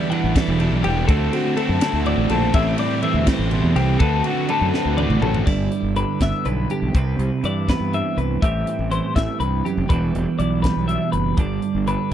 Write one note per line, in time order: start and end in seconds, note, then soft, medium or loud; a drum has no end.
0.00 1.08 E2 medium
0.00 0.11 D3 medium
0.00 0.11 E3 loud
0.00 0.11 G3 medium
0.00 0.84 G3 medium
0.00 0.12 B3 medium
0.00 0.13 E4 medium
0.00 0.36 F#4 medium
0.10 1.08 E3 medium
0.10 0.58 E3 medium
0.10 0.37 G3 medium
0.10 0.36 B3 medium
0.10 0.60 D4 medium
0.10 0.35 E4 medium
0.10 0.36 F#5 medium
0.10 ride medium
0.24 0.33 A1 medium
0.36 0.59 G3 medium
0.36 0.59 B3 medium
0.36 0.61 E4 medium
0.36 1.06 A4 medium
0.36 0.84 D5 medium
0.36 kick medium
0.36 snare loud
0.36 ride medium
0.48 0.68 E1 medium
0.59 1.05 B2 medium
0.59 1.08 E3 medium
0.59 0.84 G3 medium
0.59 0.84 B3 medium
0.59 1.06 D4 medium
0.59 0.83 E4 medium
0.59 ride medium
0.72 0.82 B1 loud
0.83 1.04 E1 medium
0.83 1.09 G3 medium
0.83 1.07 G3 medium
0.83 1.07 B3 medium
0.83 1.09 E4 medium
0.83 1.07 G4 medium
0.83 ride medium
1.08 1.28 D2 loud
1.08 1.55 D3 medium
1.08 2.54 D3 medium
1.08 1.34 A3 medium
1.08 1.56 A3 medium
1.08 1.33 C4 medium
1.08 1.33 C4 loud
1.08 1.57 E4 medium
1.08 1.31 F#4 loud
1.08 1.33 A4 medium
1.08 kick loud
1.08 ride medium
1.32 1.57 A3 soft
1.32 1.57 C4 medium
1.32 2.31 C4 medium
1.32 1.57 F#4 medium
1.32 1.56 F#4 medium
1.32 ride medium
1.56 2.03 D3 medium
1.56 2.70 A3 medium
1.56 1.83 A3 medium
1.56 1.82 C4 medium
1.56 1.81 E4 medium
1.56 1.80 F#4 medium
1.56 2.05 A4 medium
1.56 ride medium
1.69 1.79 F#2 medium
1.81 2.05 A3 medium
1.81 2.05 C4 medium
1.81 2.06 E4 medium
1.81 2.05 F#4 medium
1.81 snare loud
1.81 ride loud
1.93 2.13 D2 medium
2.04 2.54 A2 medium
2.04 2.52 D3 medium
2.04 2.31 A3 medium
2.04 2.30 C4 medium
2.04 2.55 E4 medium
2.04 2.29 F#4 medium
2.04 2.30 D5 medium
2.04 ride medium
2.18 2.28 A1 medium
2.30 2.50 A#1 medium
2.30 2.54 A3 medium
2.30 2.54 C4 medium
2.30 3.54 C4 medium
2.30 2.53 F#4 medium
2.30 2.54 A4 medium
2.30 ride medium
2.53 2.74 A1 loud
2.53 3.02 A2 loud
2.53 3.25 A2 medium
2.53 3.02 E3 medium
2.53 2.79 A3 loud
2.53 2.78 C4 loud
2.53 2.77 E4 loud
2.53 2.67 E4 medium
2.53 2.78 E5 medium
2.53 kick loud
2.53 ride loud
2.67 4.00 G4 medium
2.77 4.01 G3 medium
2.77 3.03 A3 medium
2.77 3.04 C4 medium
2.77 3.04 E4 medium
2.77 3.02 D5 medium
2.77 ride medium
3.02 3.51 E3 medium
3.02 3.99 E3 medium
3.02 3.27 A3 medium
3.02 3.26 C4 medium
3.02 3.26 E4 medium
3.02 3.27 E5 medium
3.02 ride medium
3.14 3.24 D2 medium
3.26 3.51 A2 medium
3.26 3.51 A3 medium
3.26 3.52 C4 medium
3.26 3.54 E4 medium
3.26 3.76 C5 medium
3.26 kick medium
3.26 snare medium
3.26 ride loud
3.39 3.59 A1 medium
3.51 3.75 B2 medium
3.51 3.99 E3 medium
3.51 3.77 A3 medium
3.51 3.76 C4 medium
3.51 3.75 E4 medium
3.51 ride medium
3.64 3.74 E2 loud
3.75 3.96 C2 loud
3.75 4.00 C3 medium
3.75 3.99 A3 medium
3.75 3.99 C4 medium
3.75 4.01 E4 medium
3.75 3.99 G4 medium
3.75 ride medium
3.99 4.20 D2 loud
3.99 4.49 D3 loud
3.99 5.95 D3 medium
3.99 4.26 A3 medium
3.99 4.25 C4 loud
3.99 4.23 F#4 loud
3.99 4.24 A4 medium
3.99 4.48 B4 medium
3.99 kick loud
3.99 ride medium
4.24 4.50 A3 medium
4.24 4.50 C4 medium
4.24 4.49 F#4 medium
4.24 4.51 F#4 medium
4.24 5.22 F#4 medium
4.24 ride medium
4.48 4.97 D3 medium
4.48 4.75 A3 medium
4.48 4.74 C4 medium
4.48 5.44 D4 medium
4.48 4.73 F#4 medium
4.48 4.99 A4 medium
4.48 4.74 B4 medium
4.48 ride medium
4.61 4.71 F#2 medium
4.74 4.98 A3 medium
4.74 4.98 C4 medium
4.74 4.99 F#4 medium
4.74 4.97 B4 medium
4.74 snare medium
4.85 5.06 D2 medium
4.97 5.44 A2 medium
4.97 5.45 D3 medium
4.97 5.24 A3 medium
4.97 5.24 C4 medium
4.97 5.23 F#4 medium
4.97 5.44 B4 medium
4.97 5.22 D5 medium
4.97 high tom medium
5.10 5.20 A1 medium
5.10 mid tom medium
5.21 5.42 A1 medium
5.21 5.47 C4 medium
5.21 5.44 F#4 medium
5.21 5.46 F#4 medium
5.21 5.47 A4 medium
5.21 mid tom medium
5.26 5.47 A3 medium
5.34 floor tom loud
5.46 5.67 G1 medium
5.46 6.91 G2 medium
5.46 6.46 E4 medium
5.46 5.95 D5 medium
5.46 kick loud
5.46 crash medium
5.72 closed hi-hat medium
5.83 6.03 G1 medium
5.96 6.44 D3 medium
5.96 6.21 B4 medium
5.96 closed hi-hat medium
6.21 6.31 G1 medium
6.21 6.92 B3 medium
6.21 6.46 E5 medium
6.21 kick medium
6.21 snare medium
6.21 closed hi-hat medium
6.45 6.65 B1 medium
6.45 6.91 D3 medium
6.45 6.95 E4 soft
6.45 6.70 B4 medium
6.45 closed hi-hat medium
6.70 6.96 G4 medium
6.70 closed hi-hat medium
6.82 6.92 B1 medium
6.94 7.15 C2 medium
6.94 7.44 C3 medium
6.94 7.93 C4 soft
6.94 7.44 B4 medium
6.94 kick loud
6.94 closed hi-hat medium
7.19 7.29 C2 medium
7.19 closed hi-hat medium
7.44 7.74 G2 medium
7.44 8.43 E3 medium
7.44 7.69 D5 medium
7.44 closed hi-hat medium
7.68 8.39 B3 medium
7.68 7.93 B4 medium
7.68 kick medium
7.68 snare medium
7.68 closed hi-hat medium
7.80 8.00 G2 medium
7.93 8.39 G2 soft
7.93 8.40 C4 soft
7.93 8.18 E5 medium
7.93 closed hi-hat medium
8.17 8.38 C2 medium
8.17 8.42 B4 medium
8.17 closed hi-hat soft
8.42 8.63 A1 medium
8.42 9.15 A2 medium
8.42 8.90 E3 soft
8.42 9.91 G3 soft
8.42 9.88 C4 medium
8.42 9.92 G4 medium
8.42 8.91 E5 medium
8.42 kick loud
8.42 closed hi-hat medium
8.67 closed hi-hat medium
8.79 8.99 A1 medium
8.91 9.90 E3 medium
8.91 9.15 C5 medium
8.91 closed hi-hat medium
9.16 9.26 A1 medium
9.16 9.41 A2 medium
9.16 9.40 E5 medium
9.16 kick medium
9.16 snare medium
9.16 closed hi-hat medium
9.40 9.60 C2 medium
9.40 9.65 G2 soft
9.40 9.65 B4 medium
9.40 closed hi-hat medium
9.65 9.89 F#2 medium
9.65 9.90 G4 medium
9.65 closed hi-hat soft
9.77 9.87 F1 loud
9.89 10.10 E1 loud
9.89 11.37 E2 medium
9.89 10.39 E3 medium
9.89 10.64 G3 soft
9.89 10.89 D4 medium
9.89 11.36 F#4 medium
9.89 10.38 B4 medium
9.89 kick loud
9.89 closed hi-hat medium
10.15 10.25 E1 medium
10.15 closed hi-hat medium
10.39 10.70 B1 medium
10.39 11.42 E3 medium
10.39 10.62 D5 medium
10.39 closed hi-hat medium
10.62 12.13 G3 medium
10.62 10.87 B4 medium
10.62 kick medium
10.62 snare medium
10.62 closed hi-hat medium
10.76 10.96 B1 medium
10.88 11.35 B2 medium
10.88 11.36 D4 soft
10.88 11.12 E5 medium
10.88 closed hi-hat medium
11.12 11.33 F#1 medium
11.12 11.37 B4 medium
11.12 closed hi-hat medium
11.37 11.58 G1 medium
11.37 12.13 G2 medium
11.37 12.13 D4 soft
11.37 11.87 D5 medium
11.37 kick loud
11.37 closed hi-hat medium
11.62 closed hi-hat soft
11.75 11.95 G1 medium
11.87 12.13 D3 medium
11.87 12.12 B4 medium
11.87 closed hi-hat medium